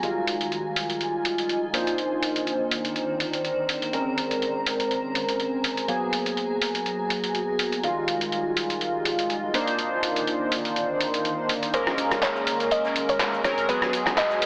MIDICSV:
0, 0, Header, 1, 5, 480
1, 0, Start_track
1, 0, Tempo, 487805
1, 31, Time_signature, 4, 2, 24, 8
1, 14227, End_track
2, 0, Start_track
2, 0, Title_t, "Ambient pad"
2, 0, Program_c, 0, 92
2, 0, Note_on_c, 0, 80, 83
2, 0, Note_on_c, 0, 82, 74
2, 31, Note_on_c, 0, 65, 72
2, 706, Note_off_c, 0, 82, 0
2, 1710, Note_off_c, 0, 80, 0
2, 1710, Note_on_c, 0, 51, 85
2, 1796, Note_on_c, 0, 72, 86
2, 2029, Note_on_c, 0, 82, 90
2, 2178, Note_on_c, 0, 74, 81
2, 2583, Note_off_c, 0, 65, 0
2, 3870, Note_off_c, 0, 74, 0
2, 4327, Note_on_c, 0, 80, 78
2, 4643, Note_off_c, 0, 51, 0
2, 5789, Note_on_c, 0, 66, 74
2, 5790, Note_off_c, 0, 72, 0
2, 7710, Note_off_c, 0, 66, 0
2, 7712, Note_on_c, 0, 65, 80
2, 8386, Note_off_c, 0, 82, 0
2, 9389, Note_on_c, 0, 51, 74
2, 9390, Note_off_c, 0, 80, 0
2, 9737, Note_on_c, 0, 74, 88
2, 9837, Note_on_c, 0, 84, 85
2, 10264, Note_off_c, 0, 65, 0
2, 10361, Note_on_c, 0, 82, 73
2, 11549, Note_off_c, 0, 74, 0
2, 12322, Note_off_c, 0, 51, 0
2, 12423, Note_on_c, 0, 80, 89
2, 13469, Note_off_c, 0, 84, 0
2, 13469, Note_on_c, 0, 66, 90
2, 14227, Note_off_c, 0, 66, 0
2, 14227, Note_off_c, 0, 80, 0
2, 14227, Note_off_c, 0, 82, 0
2, 14227, End_track
3, 0, Start_track
3, 0, Title_t, "Synth pluck"
3, 0, Program_c, 1, 84
3, 11551, Note_on_c, 1, 72, 97
3, 11997, Note_off_c, 1, 72, 0
3, 12031, Note_on_c, 1, 73, 101
3, 12512, Note_on_c, 1, 75, 101
3, 12525, Note_off_c, 1, 73, 0
3, 12856, Note_off_c, 1, 75, 0
3, 12883, Note_on_c, 1, 73, 97
3, 13207, Note_off_c, 1, 73, 0
3, 13230, Note_on_c, 1, 73, 95
3, 13469, Note_on_c, 1, 71, 99
3, 13477, Note_off_c, 1, 73, 0
3, 13951, Note_on_c, 1, 75, 104
3, 13964, Note_off_c, 1, 71, 0
3, 14227, Note_off_c, 1, 75, 0
3, 14227, End_track
4, 0, Start_track
4, 0, Title_t, "Analog polysynth"
4, 0, Program_c, 2, 90
4, 24, Note_on_c, 2, 51, 72
4, 28, Note_on_c, 2, 55, 67
4, 32, Note_on_c, 2, 56, 67
4, 35, Note_on_c, 2, 65, 79
4, 1681, Note_off_c, 2, 51, 0
4, 1683, Note_off_c, 2, 55, 0
4, 1685, Note_off_c, 2, 56, 0
4, 1687, Note_off_c, 2, 65, 0
4, 1704, Note_on_c, 2, 58, 76
4, 1708, Note_on_c, 2, 62, 69
4, 1712, Note_on_c, 2, 63, 69
4, 1716, Note_on_c, 2, 72, 82
4, 3841, Note_off_c, 2, 58, 0
4, 3843, Note_off_c, 2, 62, 0
4, 3845, Note_off_c, 2, 63, 0
4, 3847, Note_off_c, 2, 72, 0
4, 3865, Note_on_c, 2, 56, 76
4, 3868, Note_on_c, 2, 60, 67
4, 3872, Note_on_c, 2, 61, 65
4, 3876, Note_on_c, 2, 70, 80
4, 5761, Note_off_c, 2, 56, 0
4, 5763, Note_off_c, 2, 60, 0
4, 5765, Note_off_c, 2, 61, 0
4, 5767, Note_off_c, 2, 70, 0
4, 5784, Note_on_c, 2, 54, 75
4, 5787, Note_on_c, 2, 58, 68
4, 5791, Note_on_c, 2, 59, 70
4, 5795, Note_on_c, 2, 68, 85
4, 7681, Note_off_c, 2, 54, 0
4, 7683, Note_off_c, 2, 58, 0
4, 7684, Note_off_c, 2, 59, 0
4, 7686, Note_off_c, 2, 68, 0
4, 7703, Note_on_c, 2, 51, 77
4, 7707, Note_on_c, 2, 55, 69
4, 7711, Note_on_c, 2, 56, 65
4, 7715, Note_on_c, 2, 65, 82
4, 9361, Note_off_c, 2, 51, 0
4, 9362, Note_off_c, 2, 55, 0
4, 9364, Note_off_c, 2, 56, 0
4, 9366, Note_off_c, 2, 65, 0
4, 9384, Note_on_c, 2, 58, 77
4, 9388, Note_on_c, 2, 62, 70
4, 9391, Note_on_c, 2, 63, 73
4, 9395, Note_on_c, 2, 72, 86
4, 11521, Note_off_c, 2, 58, 0
4, 11523, Note_off_c, 2, 62, 0
4, 11525, Note_off_c, 2, 63, 0
4, 11526, Note_off_c, 2, 72, 0
4, 11544, Note_on_c, 2, 56, 80
4, 11548, Note_on_c, 2, 58, 77
4, 11552, Note_on_c, 2, 61, 70
4, 11555, Note_on_c, 2, 70, 85
4, 13201, Note_off_c, 2, 56, 0
4, 13203, Note_off_c, 2, 58, 0
4, 13205, Note_off_c, 2, 61, 0
4, 13207, Note_off_c, 2, 70, 0
4, 13227, Note_on_c, 2, 56, 90
4, 13229, Note_on_c, 2, 60, 88
4, 13230, Note_on_c, 2, 61, 85
4, 13232, Note_on_c, 2, 70, 101
4, 13442, Note_off_c, 2, 56, 0
4, 13443, Note_off_c, 2, 60, 0
4, 13444, Note_off_c, 2, 61, 0
4, 13445, Note_off_c, 2, 70, 0
4, 13464, Note_on_c, 2, 54, 81
4, 13468, Note_on_c, 2, 56, 73
4, 13471, Note_on_c, 2, 59, 75
4, 13475, Note_on_c, 2, 68, 85
4, 14227, Note_off_c, 2, 54, 0
4, 14227, Note_off_c, 2, 56, 0
4, 14227, Note_off_c, 2, 59, 0
4, 14227, Note_off_c, 2, 68, 0
4, 14227, End_track
5, 0, Start_track
5, 0, Title_t, "Drums"
5, 30, Note_on_c, 9, 42, 50
5, 128, Note_off_c, 9, 42, 0
5, 270, Note_on_c, 9, 46, 105
5, 369, Note_off_c, 9, 46, 0
5, 401, Note_on_c, 9, 42, 63
5, 499, Note_off_c, 9, 42, 0
5, 510, Note_on_c, 9, 42, 48
5, 609, Note_off_c, 9, 42, 0
5, 751, Note_on_c, 9, 46, 106
5, 849, Note_off_c, 9, 46, 0
5, 882, Note_on_c, 9, 42, 61
5, 981, Note_off_c, 9, 42, 0
5, 991, Note_on_c, 9, 42, 51
5, 1089, Note_off_c, 9, 42, 0
5, 1230, Note_on_c, 9, 46, 101
5, 1329, Note_off_c, 9, 46, 0
5, 1361, Note_on_c, 9, 42, 60
5, 1460, Note_off_c, 9, 42, 0
5, 1470, Note_on_c, 9, 42, 48
5, 1568, Note_off_c, 9, 42, 0
5, 1710, Note_on_c, 9, 46, 104
5, 1809, Note_off_c, 9, 46, 0
5, 1841, Note_on_c, 9, 42, 61
5, 1939, Note_off_c, 9, 42, 0
5, 1950, Note_on_c, 9, 42, 50
5, 2049, Note_off_c, 9, 42, 0
5, 2190, Note_on_c, 9, 46, 103
5, 2288, Note_off_c, 9, 46, 0
5, 2321, Note_on_c, 9, 42, 59
5, 2420, Note_off_c, 9, 42, 0
5, 2431, Note_on_c, 9, 42, 49
5, 2529, Note_off_c, 9, 42, 0
5, 2671, Note_on_c, 9, 46, 104
5, 2769, Note_off_c, 9, 46, 0
5, 2802, Note_on_c, 9, 42, 59
5, 2900, Note_off_c, 9, 42, 0
5, 2910, Note_on_c, 9, 42, 50
5, 3009, Note_off_c, 9, 42, 0
5, 3150, Note_on_c, 9, 46, 102
5, 3248, Note_off_c, 9, 46, 0
5, 3281, Note_on_c, 9, 42, 57
5, 3379, Note_off_c, 9, 42, 0
5, 3390, Note_on_c, 9, 42, 49
5, 3489, Note_off_c, 9, 42, 0
5, 3630, Note_on_c, 9, 46, 102
5, 3729, Note_off_c, 9, 46, 0
5, 3761, Note_on_c, 9, 42, 61
5, 3859, Note_off_c, 9, 42, 0
5, 3870, Note_on_c, 9, 42, 48
5, 3968, Note_off_c, 9, 42, 0
5, 4110, Note_on_c, 9, 46, 99
5, 4208, Note_off_c, 9, 46, 0
5, 4241, Note_on_c, 9, 42, 62
5, 4340, Note_off_c, 9, 42, 0
5, 4350, Note_on_c, 9, 42, 48
5, 4449, Note_off_c, 9, 42, 0
5, 4590, Note_on_c, 9, 46, 104
5, 4688, Note_off_c, 9, 46, 0
5, 4721, Note_on_c, 9, 42, 60
5, 4820, Note_off_c, 9, 42, 0
5, 4831, Note_on_c, 9, 42, 49
5, 4929, Note_off_c, 9, 42, 0
5, 5070, Note_on_c, 9, 46, 97
5, 5168, Note_off_c, 9, 46, 0
5, 5201, Note_on_c, 9, 42, 60
5, 5300, Note_off_c, 9, 42, 0
5, 5310, Note_on_c, 9, 42, 48
5, 5409, Note_off_c, 9, 42, 0
5, 5550, Note_on_c, 9, 46, 99
5, 5649, Note_off_c, 9, 46, 0
5, 5681, Note_on_c, 9, 42, 60
5, 5779, Note_off_c, 9, 42, 0
5, 5790, Note_on_c, 9, 42, 54
5, 5888, Note_off_c, 9, 42, 0
5, 6030, Note_on_c, 9, 46, 99
5, 6128, Note_off_c, 9, 46, 0
5, 6161, Note_on_c, 9, 42, 66
5, 6259, Note_off_c, 9, 42, 0
5, 6270, Note_on_c, 9, 42, 49
5, 6368, Note_off_c, 9, 42, 0
5, 6510, Note_on_c, 9, 46, 96
5, 6608, Note_off_c, 9, 46, 0
5, 6641, Note_on_c, 9, 42, 61
5, 6739, Note_off_c, 9, 42, 0
5, 6749, Note_on_c, 9, 42, 49
5, 6848, Note_off_c, 9, 42, 0
5, 6989, Note_on_c, 9, 46, 97
5, 7088, Note_off_c, 9, 46, 0
5, 7120, Note_on_c, 9, 42, 65
5, 7219, Note_off_c, 9, 42, 0
5, 7229, Note_on_c, 9, 42, 50
5, 7328, Note_off_c, 9, 42, 0
5, 7470, Note_on_c, 9, 46, 99
5, 7568, Note_off_c, 9, 46, 0
5, 7600, Note_on_c, 9, 42, 59
5, 7699, Note_off_c, 9, 42, 0
5, 7709, Note_on_c, 9, 42, 53
5, 7808, Note_off_c, 9, 42, 0
5, 7949, Note_on_c, 9, 46, 99
5, 8048, Note_off_c, 9, 46, 0
5, 8081, Note_on_c, 9, 42, 66
5, 8179, Note_off_c, 9, 42, 0
5, 8190, Note_on_c, 9, 42, 52
5, 8288, Note_off_c, 9, 42, 0
5, 8430, Note_on_c, 9, 46, 94
5, 8528, Note_off_c, 9, 46, 0
5, 8561, Note_on_c, 9, 42, 62
5, 8659, Note_off_c, 9, 42, 0
5, 8669, Note_on_c, 9, 42, 54
5, 8768, Note_off_c, 9, 42, 0
5, 8909, Note_on_c, 9, 46, 100
5, 9008, Note_off_c, 9, 46, 0
5, 9040, Note_on_c, 9, 42, 64
5, 9139, Note_off_c, 9, 42, 0
5, 9150, Note_on_c, 9, 42, 53
5, 9248, Note_off_c, 9, 42, 0
5, 9389, Note_on_c, 9, 46, 98
5, 9488, Note_off_c, 9, 46, 0
5, 9520, Note_on_c, 9, 42, 63
5, 9618, Note_off_c, 9, 42, 0
5, 9629, Note_on_c, 9, 42, 57
5, 9728, Note_off_c, 9, 42, 0
5, 9869, Note_on_c, 9, 46, 99
5, 9968, Note_off_c, 9, 46, 0
5, 10000, Note_on_c, 9, 42, 68
5, 10099, Note_off_c, 9, 42, 0
5, 10110, Note_on_c, 9, 42, 56
5, 10208, Note_off_c, 9, 42, 0
5, 10349, Note_on_c, 9, 46, 99
5, 10448, Note_off_c, 9, 46, 0
5, 10480, Note_on_c, 9, 46, 55
5, 10579, Note_off_c, 9, 46, 0
5, 10590, Note_on_c, 9, 42, 53
5, 10688, Note_off_c, 9, 42, 0
5, 10829, Note_on_c, 9, 46, 94
5, 10928, Note_off_c, 9, 46, 0
5, 10961, Note_on_c, 9, 42, 65
5, 11059, Note_off_c, 9, 42, 0
5, 11070, Note_on_c, 9, 42, 53
5, 11168, Note_off_c, 9, 42, 0
5, 11310, Note_on_c, 9, 46, 96
5, 11408, Note_off_c, 9, 46, 0
5, 11441, Note_on_c, 9, 42, 67
5, 11539, Note_off_c, 9, 42, 0
5, 11549, Note_on_c, 9, 42, 67
5, 11549, Note_on_c, 9, 82, 48
5, 11550, Note_on_c, 9, 51, 91
5, 11647, Note_off_c, 9, 82, 0
5, 11648, Note_off_c, 9, 42, 0
5, 11648, Note_off_c, 9, 51, 0
5, 11678, Note_on_c, 9, 82, 24
5, 11680, Note_on_c, 9, 37, 75
5, 11777, Note_off_c, 9, 82, 0
5, 11779, Note_off_c, 9, 37, 0
5, 11789, Note_on_c, 9, 46, 100
5, 11790, Note_on_c, 9, 51, 64
5, 11790, Note_on_c, 9, 82, 88
5, 11888, Note_off_c, 9, 46, 0
5, 11889, Note_off_c, 9, 51, 0
5, 11889, Note_off_c, 9, 82, 0
5, 11917, Note_on_c, 9, 82, 42
5, 11921, Note_on_c, 9, 37, 76
5, 11921, Note_on_c, 9, 42, 53
5, 12015, Note_off_c, 9, 82, 0
5, 12019, Note_off_c, 9, 37, 0
5, 12019, Note_off_c, 9, 42, 0
5, 12022, Note_on_c, 9, 51, 91
5, 12026, Note_on_c, 9, 38, 117
5, 12029, Note_on_c, 9, 42, 66
5, 12032, Note_on_c, 9, 39, 123
5, 12040, Note_on_c, 9, 82, 54
5, 12121, Note_off_c, 9, 51, 0
5, 12125, Note_off_c, 9, 38, 0
5, 12128, Note_off_c, 9, 42, 0
5, 12131, Note_off_c, 9, 39, 0
5, 12138, Note_off_c, 9, 82, 0
5, 12156, Note_on_c, 9, 38, 37
5, 12162, Note_on_c, 9, 82, 24
5, 12255, Note_off_c, 9, 38, 0
5, 12260, Note_off_c, 9, 82, 0
5, 12269, Note_on_c, 9, 46, 104
5, 12271, Note_on_c, 9, 51, 62
5, 12274, Note_on_c, 9, 82, 84
5, 12368, Note_off_c, 9, 46, 0
5, 12369, Note_off_c, 9, 51, 0
5, 12372, Note_off_c, 9, 82, 0
5, 12397, Note_on_c, 9, 82, 36
5, 12401, Note_on_c, 9, 42, 53
5, 12402, Note_on_c, 9, 38, 36
5, 12496, Note_off_c, 9, 82, 0
5, 12499, Note_off_c, 9, 42, 0
5, 12501, Note_off_c, 9, 38, 0
5, 12507, Note_on_c, 9, 51, 93
5, 12510, Note_on_c, 9, 42, 72
5, 12510, Note_on_c, 9, 82, 45
5, 12605, Note_off_c, 9, 51, 0
5, 12608, Note_off_c, 9, 82, 0
5, 12609, Note_off_c, 9, 42, 0
5, 12642, Note_on_c, 9, 82, 27
5, 12646, Note_on_c, 9, 38, 57
5, 12740, Note_off_c, 9, 82, 0
5, 12745, Note_off_c, 9, 38, 0
5, 12748, Note_on_c, 9, 51, 61
5, 12750, Note_on_c, 9, 46, 101
5, 12753, Note_on_c, 9, 82, 81
5, 12847, Note_off_c, 9, 51, 0
5, 12848, Note_off_c, 9, 46, 0
5, 12851, Note_off_c, 9, 82, 0
5, 12880, Note_on_c, 9, 82, 42
5, 12881, Note_on_c, 9, 42, 53
5, 12978, Note_off_c, 9, 82, 0
5, 12979, Note_off_c, 9, 42, 0
5, 12989, Note_on_c, 9, 38, 106
5, 12990, Note_on_c, 9, 42, 71
5, 12990, Note_on_c, 9, 51, 91
5, 12990, Note_on_c, 9, 82, 49
5, 12993, Note_on_c, 9, 39, 123
5, 13088, Note_off_c, 9, 38, 0
5, 13088, Note_off_c, 9, 42, 0
5, 13088, Note_off_c, 9, 82, 0
5, 13089, Note_off_c, 9, 51, 0
5, 13091, Note_off_c, 9, 39, 0
5, 13125, Note_on_c, 9, 82, 28
5, 13224, Note_off_c, 9, 82, 0
5, 13230, Note_on_c, 9, 37, 79
5, 13230, Note_on_c, 9, 46, 98
5, 13231, Note_on_c, 9, 38, 46
5, 13231, Note_on_c, 9, 82, 101
5, 13232, Note_on_c, 9, 51, 70
5, 13328, Note_off_c, 9, 37, 0
5, 13328, Note_off_c, 9, 46, 0
5, 13329, Note_off_c, 9, 38, 0
5, 13330, Note_off_c, 9, 82, 0
5, 13331, Note_off_c, 9, 51, 0
5, 13360, Note_on_c, 9, 42, 52
5, 13360, Note_on_c, 9, 82, 39
5, 13459, Note_off_c, 9, 42, 0
5, 13459, Note_off_c, 9, 82, 0
5, 13469, Note_on_c, 9, 42, 69
5, 13471, Note_on_c, 9, 82, 50
5, 13473, Note_on_c, 9, 51, 83
5, 13567, Note_off_c, 9, 42, 0
5, 13570, Note_off_c, 9, 82, 0
5, 13571, Note_off_c, 9, 51, 0
5, 13599, Note_on_c, 9, 82, 25
5, 13600, Note_on_c, 9, 37, 77
5, 13698, Note_off_c, 9, 37, 0
5, 13698, Note_off_c, 9, 82, 0
5, 13709, Note_on_c, 9, 46, 104
5, 13716, Note_on_c, 9, 51, 61
5, 13719, Note_on_c, 9, 82, 93
5, 13807, Note_off_c, 9, 46, 0
5, 13815, Note_off_c, 9, 51, 0
5, 13817, Note_off_c, 9, 82, 0
5, 13841, Note_on_c, 9, 37, 75
5, 13841, Note_on_c, 9, 42, 55
5, 13843, Note_on_c, 9, 82, 39
5, 13844, Note_on_c, 9, 39, 40
5, 13939, Note_off_c, 9, 37, 0
5, 13939, Note_off_c, 9, 42, 0
5, 13941, Note_off_c, 9, 82, 0
5, 13942, Note_off_c, 9, 39, 0
5, 13949, Note_on_c, 9, 42, 68
5, 13951, Note_on_c, 9, 51, 81
5, 13952, Note_on_c, 9, 38, 104
5, 13953, Note_on_c, 9, 39, 126
5, 13953, Note_on_c, 9, 82, 50
5, 14048, Note_off_c, 9, 42, 0
5, 14049, Note_off_c, 9, 51, 0
5, 14051, Note_off_c, 9, 38, 0
5, 14051, Note_off_c, 9, 39, 0
5, 14052, Note_off_c, 9, 82, 0
5, 14077, Note_on_c, 9, 82, 25
5, 14081, Note_on_c, 9, 38, 52
5, 14175, Note_off_c, 9, 82, 0
5, 14179, Note_off_c, 9, 38, 0
5, 14188, Note_on_c, 9, 51, 71
5, 14189, Note_on_c, 9, 46, 112
5, 14192, Note_on_c, 9, 82, 97
5, 14227, Note_off_c, 9, 46, 0
5, 14227, Note_off_c, 9, 51, 0
5, 14227, Note_off_c, 9, 82, 0
5, 14227, End_track
0, 0, End_of_file